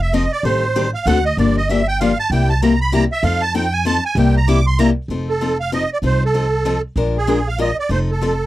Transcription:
0.00 0.25 F1 loud
0.00 0.13 E5 loud
0.13 0.24 F3 loud
0.13 0.24 C4 loud
0.13 0.24 D#4 loud
0.13 0.24 A4 loud
0.13 0.32 D#5 medium
0.32 0.44 D5 loud
0.43 0.93 A1 medium
0.43 0.64 D#3 medium
0.43 0.64 G3 medium
0.43 0.64 C4 medium
0.43 0.64 G4 medium
0.43 0.64 A4 medium
0.43 0.91 C5 medium
0.76 0.86 D#3 medium
0.76 0.86 G3 loud
0.76 0.86 C4 medium
0.76 0.86 G4 loud
0.76 0.87 A4 medium
0.94 1.06 F5 medium
1.06 1.31 D2 medium
1.06 1.17 D3 medium
1.06 1.17 A3 loud
1.06 1.18 C4 loud
1.06 1.18 F#4 loud
1.06 1.18 A4 loud
1.06 1.24 F#5 loud
1.25 1.37 D#5 loud
1.37 2.12 G1 medium
1.37 1.57 D3 medium
1.37 1.58 F3 medium
1.37 1.58 A#3 medium
1.37 1.58 D4 medium
1.37 1.58 G4 medium
1.37 1.56 D5 medium
1.57 1.69 D#5 loud
1.69 1.80 D3 medium
1.69 1.80 F3 medium
1.69 1.80 A#3 loud
1.69 1.80 D4 medium
1.69 1.80 G4 loud
1.69 1.87 E5 medium
1.88 2.00 G5 loud
2.00 2.11 D3 loud
2.00 2.11 F3 loud
2.00 2.11 A#3 medium
2.00 2.11 D4 loud
2.00 2.11 G4 loud
2.00 2.18 F5 medium
2.19 2.31 A5 loud
2.30 3.04 C2 medium
2.30 2.51 C3 medium
2.30 2.51 G3 medium
2.30 2.51 A#3 medium
2.30 2.51 E4 medium
2.30 2.52 G4 medium
2.30 2.49 G5 medium
2.49 2.61 A5 loud
2.62 2.73 C3 medium
2.62 2.73 G3 loud
2.62 2.73 A#3 loud
2.62 2.73 E4 loud
2.62 2.73 G4 loud
2.62 2.80 A#5 medium
2.81 2.93 B5 loud
2.92 3.03 C3 loud
2.92 3.03 G3 loud
2.92 3.03 A#3 loud
2.92 3.03 E4 loud
2.92 3.04 G4 loud
2.92 3.04 A#5 loud
3.12 3.24 E5 loud
3.23 3.97 F2 loud
3.23 3.43 F3 medium
3.23 3.43 C4 medium
3.23 3.43 D#4 medium
3.23 3.44 A4 medium
3.23 3.42 F5 loud
3.42 3.54 A5 loud
3.54 3.65 F3 loud
3.54 3.65 C4 loud
3.54 3.65 D#4 medium
3.54 3.66 A4 loud
3.54 3.73 G5 loud
3.73 3.85 G#5 loud
3.85 3.96 F3 loud
3.85 3.97 C4 loud
3.85 3.97 D#4 loud
3.85 3.97 A4 loud
3.85 4.04 A5 loud
4.05 4.17 G#5 loud
4.15 4.90 C2 medium
4.15 4.36 C3 medium
4.15 4.37 G3 medium
4.15 4.37 A#3 medium
4.15 4.37 E4 medium
4.15 4.37 G4 medium
4.15 4.35 G5 loud
4.37 4.48 A#5 loud
4.48 4.58 C3 medium
4.48 4.58 G3 loud
4.48 4.59 A#3 medium
4.48 4.59 E4 loud
4.48 4.59 G4 loud
4.48 4.66 D6 loud
4.67 4.79 C6 loud
4.79 4.89 C3 loud
4.79 4.90 G3 loud
4.79 4.89 A#3 loud
4.79 4.90 E4 loud
4.79 4.90 G4 loud
4.79 4.90 A#5 loud
5.08 5.83 F1 medium
5.08 5.30 F3 medium
5.08 5.30 C4 medium
5.08 5.30 D#4 medium
5.08 5.30 A4 medium
5.29 5.58 A4 medium
5.41 5.52 F3 medium
5.41 5.52 C4 medium
5.41 5.52 D#4 medium
5.41 5.52 A4 medium
5.60 5.71 F5 loud
5.72 5.83 F3 medium
5.72 5.83 C4 loud
5.72 5.83 D#4 medium
5.72 5.83 A4 loud
5.72 5.90 D#5 loud
5.93 5.98 D5 loud
6.02 6.77 C2 medium
6.02 6.23 F3 medium
6.02 6.23 C4 medium
6.02 6.23 D#4 medium
6.02 6.23 A4 medium
6.06 6.24 C5 medium
6.25 6.82 A4 medium
6.34 6.45 F3 medium
6.34 6.45 C4 medium
6.34 6.45 D#4 medium
6.34 6.45 A4 medium
6.65 6.76 F3 loud
6.65 6.76 C4 medium
6.65 6.76 D#4 loud
6.65 6.76 A4 medium
6.96 7.70 A#1 medium
6.96 7.16 F3 medium
6.96 7.16 G#3 medium
6.96 7.17 D4 medium
6.96 7.17 F4 medium
6.96 7.17 A#4 medium
7.18 7.48 G#4 medium
7.27 7.38 F3 medium
7.27 7.38 G#3 medium
7.27 7.38 D4 medium
7.27 7.38 F4 medium
7.27 7.39 A#4 medium
7.48 7.59 F5 medium
7.58 7.69 F3 medium
7.58 7.69 G#3 loud
7.58 7.70 D4 medium
7.58 7.70 F4 loud
7.58 7.70 A#4 loud
7.58 7.77 D#5 loud
7.79 7.90 D5 loud
7.89 8.46 F1 medium
7.89 8.09 F3 medium
7.89 8.10 C4 medium
7.89 8.10 D#4 medium
7.89 8.10 A4 medium
7.89 7.99 C5 medium
8.11 8.46 A4 medium
8.21 8.32 F3 medium
8.21 8.32 C4 medium
8.21 8.32 D#4 medium
8.21 8.32 A4 loud

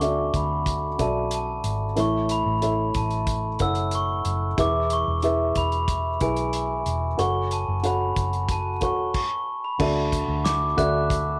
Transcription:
0.00 0.30 D2 medium
0.00 0.30 D3 soft
0.00 0.98 F#4 medium
0.00 0.99 A4 medium
0.00 0.02 D5 soft
0.00 0.88 D5 soft
0.00 0.02 E5 medium
0.00 0.88 E5 medium
0.00 0.37 C#6 medium
0.00 closed hi-hat medium
0.34 0.95 D2 medium
0.34 0.96 B5 medium
0.34 kick medium
0.34 closed hi-hat medium
0.66 kick medium
0.66 closed hi-hat medium
0.98 1.60 B1 medium
0.98 1.85 F#4 soft
0.98 1.85 A4 soft
0.98 1.85 D5 soft
0.98 1.86 E5 medium
0.98 1.31 A5 medium
0.98 kick medium
0.98 closed hi-hat medium
1.31 1.79 A5 medium
1.31 closed hi-hat medium
1.64 1.94 G#1 medium
1.64 closed hi-hat medium
1.96 2.42 A1 medium
1.96 2.91 A2 soft
1.96 2.54 E4 medium
1.96 2.54 A4 medium
1.96 2.54 C#5 medium
1.96 2.55 E5 medium
1.96 closed hi-hat medium
2.00 2.32 C#6 medium
2.29 2.98 B5 medium
2.29 closed hi-hat medium
2.46 2.91 A1 medium
2.62 3.48 E4 medium
2.62 3.48 A4 medium
2.62 3.48 C#5 soft
2.62 3.49 E5 medium
2.62 closed hi-hat medium
2.94 3.56 A1 medium
2.94 3.63 A5 medium
2.94 kick medium
2.94 closed hi-hat medium
3.11 closed hi-hat soft
3.27 kick medium
3.27 closed hi-hat medium
3.59 4.21 F#1 medium
3.59 4.46 E4 medium
3.59 4.46 A4 medium
3.59 4.46 C#5 medium
3.59 4.47 F#5 medium
3.59 3.91 E6 medium
3.59 kick medium
3.59 closed hi-hat medium
3.75 closed hi-hat soft
3.91 4.39 C#6 medium
3.91 closed hi-hat medium
4.25 4.56 F#1 medium
4.25 closed hi-hat medium
4.57 5.03 E1 medium
4.57 5.52 E3 medium
4.57 5.15 E4 medium
4.57 5.15 G#4 medium
4.57 5.15 B4 medium
4.57 5.16 E5 medium
4.57 4.93 D6 medium
4.57 kick medium
4.57 closed hi-hat medium
4.90 5.53 C#6 medium
4.90 closed hi-hat medium
5.08 5.53 E1 medium
5.22 6.09 E4 medium
5.22 6.09 G#4 medium
5.22 6.09 B4 medium
5.22 6.10 E5 medium
5.22 closed hi-hat medium
5.55 6.17 E1 medium
5.55 6.24 B5 medium
5.55 kick medium
5.55 closed hi-hat medium
5.72 closed hi-hat soft
5.88 kick medium
5.88 closed hi-hat medium
6.20 6.82 B1 medium
6.20 7.07 E4 medium
6.20 7.07 G#4 soft
6.20 7.07 B4 medium
6.20 7.08 E5 medium
6.20 6.54 G#5 medium
6.20 kick medium
6.20 closed hi-hat medium
6.36 closed hi-hat soft
6.53 7.00 G#5 medium
6.53 closed hi-hat medium
6.86 7.16 E1 medium
6.86 closed hi-hat medium
7.17 7.64 F#1 medium
7.17 7.76 F#4 medium
7.17 7.76 A4 medium
7.17 7.76 C#5 medium
7.17 7.77 F#5 medium
7.17 7.49 C#6 medium
7.17 closed hi-hat medium
7.51 7.86 A5 medium
7.51 closed hi-hat medium
7.68 8.13 F#1 medium
7.83 8.70 F#4 medium
7.83 8.70 A4 medium
7.83 8.70 C#5 medium
7.83 8.71 F#5 medium
7.83 8.52 B5 medium
7.83 closed hi-hat medium
8.16 8.82 F#1 medium
8.16 kick medium
8.16 closed hi-hat medium
8.33 closed hi-hat soft
8.49 9.44 A5 medium
8.49 kick medium
8.49 closed hi-hat medium
8.81 9.12 E1 medium
8.81 9.14 F#4 soft
8.81 9.14 A4 soft
8.81 9.14 C#5 soft
8.81 9.15 F#5 medium
8.81 9.15 C#6 medium
8.81 kick medium
8.81 closed hi-hat medium
9.14 9.66 C#6 medium
9.14 kick medium
9.14 crash medium
9.64 9.81 B5 medium
9.79 10.25 D2 medium
9.79 10.74 D3 medium
9.79 10.65 F#4 medium
9.79 10.66 A4 medium
9.79 10.66 D5 medium
9.79 10.66 E5 medium
9.79 10.41 A5 medium
9.79 kick medium
9.79 crash medium
10.12 kick medium
10.12 closed hi-hat medium
10.28 10.74 D2 medium
10.45 10.75 D6 medium
10.45 snare medium
10.45 closed hi-hat medium
10.77 11.40 D2 medium
10.77 11.40 F#4 medium
10.77 11.40 A4 medium
10.77 11.40 D5 medium
10.77 11.40 E5 medium
10.77 11.39 F#6 medium
10.77 kick medium
10.77 closed hi-hat medium
11.10 kick medium
11.10 closed hi-hat medium

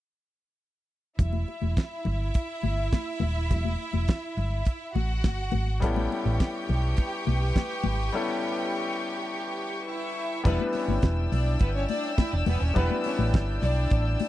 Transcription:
1.19 1.43 E1 loud
1.19 4.92 E4 medium
1.19 4.91 E5 medium
1.19 kick medium
1.19 closed hi-hat medium
1.19 muted conga soft
1.19 low conga medium
1.33 high conga medium
1.48 muted conga soft
1.62 1.74 E1 medium
1.62 high conga medium
1.77 kick loud
1.77 snare loud
1.77 closed hi-hat medium
2.05 2.30 G1 medium
2.05 muted conga soft
2.05 low conga medium
2.34 kick medium
2.34 closed hi-hat medium
2.63 2.88 G1 medium
2.63 high conga medium
2.93 kick medium
2.93 snare medium
2.93 closed hi-hat medium
2.93 high conga soft
3.20 3.51 D#1 medium
3.20 high conga medium
3.20 low conga medium
3.51 3.75 E1 loud
3.51 kick medium
3.51 closed hi-hat medium
3.51 muted conga soft
3.51 low conga medium
3.65 high conga medium
3.93 4.06 E1 medium
3.93 high conga medium
4.08 kick loud
4.08 snare loud
4.08 closed hi-hat medium
4.08 muted conga soft
4.37 4.61 G1 medium
4.37 low conga medium
4.65 kick medium
4.65 closed hi-hat medium
4.95 5.24 A1 medium
4.95 5.81 F#4 medium
4.95 5.81 F#5 medium
4.95 muted conga soft
4.95 high conga medium
5.24 5.48 G1 medium
5.24 kick loud
5.24 snare medium
5.24 closed hi-hat soft
5.24 muted conga soft
5.24 high conga soft
5.52 5.82 G#1 medium
5.52 muted conga soft
5.52 high conga medium
5.52 low conga medium
5.80 6.06 A1 loud
5.80 8.08 G3 medium
5.80 8.09 B3 medium
5.80 8.09 C#4 medium
5.80 8.10 E4 medium
5.80 9.83 G4 medium
5.80 8.10 A4 medium
5.80 10.40 B4 medium
5.80 10.40 G5 medium
5.80 9.84 G5 medium
5.80 10.40 C#6 medium
5.80 kick loud
5.80 closed hi-hat medium
5.80 muted conga soft
5.80 low conga medium
5.96 high conga medium
6.12 muted conga soft
6.25 6.38 A1 medium
6.25 high conga medium
6.40 kick loud
6.40 snare loud
6.40 closed hi-hat medium
6.69 6.93 B1 medium
6.69 muted conga soft
6.69 low conga medium
6.97 kick medium
6.97 closed hi-hat medium
6.97 muted conga soft
7.27 7.51 B1 medium
7.27 muted conga soft
7.27 high conga medium
7.56 kick medium
7.56 snare medium
7.56 closed hi-hat soft
7.56 muted conga soft
7.56 high conga soft
7.84 8.08 G#1 medium
7.84 muted conga soft
7.84 high conga medium
7.84 low conga medium
8.12 10.40 G3 medium
8.12 10.40 B3 medium
8.12 10.41 C#4 medium
8.12 10.41 E4 medium
8.12 10.41 A4 medium
9.88 10.44 E4 medium
9.88 10.44 E5 medium
10.44 10.57 E1 loud
10.44 12.71 G3 medium
10.44 12.71 B3 medium
10.44 10.57 B3 loud
10.44 12.72 D4 medium
10.44 12.72 E4 medium
10.44 10.57 B4 loud
10.44 12.72 B4 medium
10.44 14.29 D5 medium
10.44 14.29 G5 medium
10.44 14.29 E6 medium
10.44 kick loud
10.44 closed hi-hat medium
10.44 muted conga soft
10.44 low conga medium
10.60 high conga medium
10.73 10.86 C#4 medium
10.73 10.86 C#5 medium
10.73 open hi-hat medium
10.73 muted conga soft
10.88 11.00 G1 medium
10.88 high conga medium
11.02 11.26 E1 medium
11.02 kick loud
11.02 snare loud
11.02 closed hi-hat medium
11.02 muted conga soft
11.31 11.55 B1 medium
11.31 11.54 D4 medium
11.31 11.54 D5 medium
11.31 open hi-hat medium
11.31 muted conga soft
11.31 low conga medium
11.59 11.84 G1 medium
11.59 11.72 B3 medium
11.59 11.72 B4 medium
11.59 kick loud
11.59 closed hi-hat medium
11.59 muted conga soft
11.76 11.87 C#4 medium
11.76 11.87 C#5 medium
11.89 12.13 D4 medium
11.89 12.13 D5 loud
11.89 open hi-hat medium
11.89 high conga medium
12.18 12.30 E4 medium
12.18 12.30 E5 medium
12.18 kick loud
12.18 snare medium
12.18 closed hi-hat medium
12.18 high conga medium
12.33 12.45 E1 medium
12.33 12.44 D4 medium
12.33 12.44 D5 medium
12.46 12.59 E1 medium
12.46 12.59 B3 medium
12.46 12.59 B4 medium
12.46 open hi-hat medium
12.46 muted conga soft
12.46 high conga medium
12.46 low conga medium
12.61 12.73 D#1 medium
12.61 12.73 C#4 medium
12.61 12.73 C#5 medium
12.74 12.88 E1 loud
12.74 14.29 G3 medium
12.74 14.29 B3 medium
12.74 12.87 B3 loud
12.74 14.29 D4 medium
12.74 14.29 E4 medium
12.74 12.87 B4 loud
12.74 14.29 B4 medium
12.74 kick medium
12.74 closed hi-hat medium
12.74 muted conga soft
12.74 low conga medium
12.91 high conga medium
13.04 13.16 C#4 medium
13.04 13.16 C#5 medium
13.04 open hi-hat medium
13.04 muted conga soft
13.19 13.31 A1 medium
13.19 high conga medium
13.34 13.57 G1 medium
13.34 kick loud
13.34 snare loud
13.34 closed hi-hat medium
13.34 muted conga soft
13.62 13.86 B1 medium
13.62 14.17 D4 medium
13.62 14.17 D5 loud
13.62 open hi-hat medium
13.62 muted conga soft
13.62 low conga medium
13.90 14.15 A1 medium
13.90 kick loud
13.90 closed hi-hat medium
14.19 open hi-hat medium
14.19 high conga medium

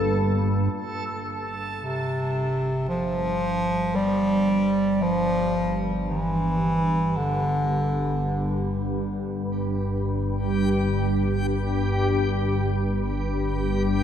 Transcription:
0.00 0.72 G1 medium
0.00 0.73 G2 medium
0.00 0.73 A#3 medium
0.00 0.75 A4 medium
0.00 0.74 F5 medium
0.74 14.03 G1 medium
0.74 14.03 G2 medium
1.81 2.84 C3 medium
2.89 3.97 F3 loud
3.95 5.03 G3 medium
5.02 5.82 F3 loud
6.10 7.18 E3 medium
7.17 8.77 D3 medium
9.32 14.03 G4 medium

